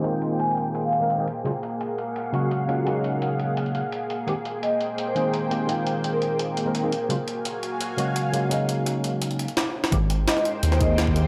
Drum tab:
HH |x-x-x-x-x-x-x-x-|x-x-x-x-x-x-x-x-|x-x-x-x-xxx-x-x-|x-x-x-x-x-x-x-x-|
SD |----------------|----------------|----------------|----------------|
BD |----------------|----------------|----------------|----------------|

HH |x-x-x-x-x-x-x-x-|x-x-x-x-x-x-x-x-|x-x-x-x-xxxx----|x-x-x-x-x-x-x-x-|
SD |----------------|----------------|------------o--o|----oo---o--o---|
BD |----------------|----------------|----------------|o---------o--o--|